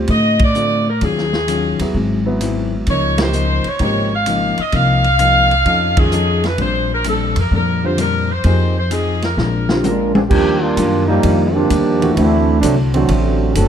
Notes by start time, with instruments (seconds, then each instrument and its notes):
0.08 upright bass A2, hollow-body jazz guitar D3 A3 C4 F4, saxophone section D#5, kick, ride
0.39 kick, ride
0.44 saxophone section D5
0.55 hollow-body jazz guitar D3 A3 C4 F4, hi-hat pedal
0.89 saxophone section A#4
1.01 upright bass D#2, hollow-body jazz guitar D#3 F#3 C#4 F4, saxophone section G#4, kick, ride
1.18 snare
1.33 snare
1.48 hollow-body jazz guitar D#3 F#3 C#4 F4, hi-hat pedal, ride
1.79 upright bass D#2, grand piano F#3 B3 E4 G#4, ride
1.95 upright bass G#1, hollow-body jazz guitar G#2 F#3 C4 E4, kick
2.26 grand piano F#3 B3 E4 B4
2.41 hollow-body jazz guitar G#2 F#3 C4 E4, hi-hat pedal, ride
2.87 upright bass C#2, hollow-body jazz guitar C#3 F3 A#3 D#4, saxophone section C#5, kick, ride
3.18 grand piano F3 A#3 D#4 G4, saxophone section C5, snare, ride
3.33 hollow-body jazz guitar C#3 F3 A#3 D#4, hi-hat pedal
3.64 saxophone section C#5, muted upright bass stroke, ride
3.79 upright bass G#1, hollow-body jazz guitar C#3 F3 A#3 D#4, grand piano F3 A#3 D#4 G4, saxophone section C#5, kick, ride
4.15 saxophone section F5
4.26 hollow-body jazz guitar C#3 F3 A#3 D#4, hi-hat pedal, ride
4.58 saxophone section D#5, muted upright bass stroke, ride
4.72 upright bass C2, hollow-body jazz guitar C3 F3 A#3 D#4, saxophone section F5, kick, ride
5.04 ride
5.19 hollow-body jazz guitar C3 F3 A#3 D#4, hi-hat pedal, ride
5.51 ride
5.66 upright bass F2, hollow-body jazz guitar F3 C#4 D#4 A4, kick, ride
5.97 grand piano D#3 G#3 C#4 F4, saxophone section G#4, kick, ride
6.12 hollow-body jazz guitar F3 C#4 D#4 A4, hi-hat pedal
6.44 saxophone section B4, snare, ride
6.58 upright bass A#1, hollow-body jazz guitar A#2 G3 C4 D4, saxophone section C5, kick, ride
6.93 saxophone section A#4
7.04 hollow-body jazz guitar A#2 G3 C4 D4, saxophone section A4, hi-hat pedal, ride
7.36 upright bass F2, saxophone section A#4, ride
7.51 upright bass F2, hollow-body jazz guitar A#2 G3 C4 D4, kick
7.55 saxophone section A#4
7.83 grand piano D3 G3 C4 F4, saxophone section C5
7.97 hollow-body jazz guitar A#2 G3 C4 D4, saxophone section A#4, hi-hat pedal, ride
8.31 saxophone section C5
8.44 upright bass F2, hollow-body jazz guitar F3 C4 D#4 G#4, grand piano F3 A#3 D#4 G4, kick, ride
8.78 saxophone section C5
8.91 hollow-body jazz guitar F3 C4 D#4 G#4, saxophone section G#4, hi-hat pedal, ride
9.22 saxophone section A#4, snare, ride
9.37 upright bass A#1, hollow-body jazz guitar A#2 G#3 C4 D4, snare
9.69 grand piano D3 G3 C4 F4, snare
9.84 hollow-body jazz guitar A#2 G#3 C4 D4, trombone section G#3 D4 F4 A#4, hi-hat pedal, high tom
10.15 trombone section F3 C4 D4 G#4, high tom
10.30 upright bass D#2, hollow-body jazz guitar D#3 G3 D4 F4, trombone section F3 A#3 D4 G4, kick, crash
10.61 trombone section G3 A#3 D4 F4
10.77 upright bass F#2, hollow-body jazz guitar D#3 G3 D4 F4, kick, hi-hat pedal, ride
11.08 trombone section F3 G3 A#3 D#4
11.23 upright bass F2, hollow-body jazz guitar D#3 G3 D4 F4, kick, ride
11.55 grand piano D3 G3 C4 F4, trombone section F3 A#3 D4 G4
11.70 upright bass D#2, hollow-body jazz guitar D#3 G3 D4 F4, kick, hi-hat pedal, ride
12.01 grand piano E3 A3 D4 F#4, ride
12.15 upright bass D2, hollow-body jazz guitar D3 A3, trombone section A3 C4 D4 E4, kick, ride
12.19 hollow-body jazz guitar C4 F#4
12.61 upright bass C2, hollow-body jazz guitar D3 A3 C4 F#4, trombone section F#3 A3 C4 D4, kick, hi-hat pedal, ride
12.94 trombone section D3 F#3 A3 C4, grand piano E3 A3 D4 F#4, ride
13.09 upright bass A1, hollow-body jazz guitar D3 A3 C4 F#4, kick, ride
13.55 upright bass F#1, hollow-body jazz guitar D3 A3 C4 F#4, trombone section F#3 C4 D4 A4, kick, hi-hat pedal, ride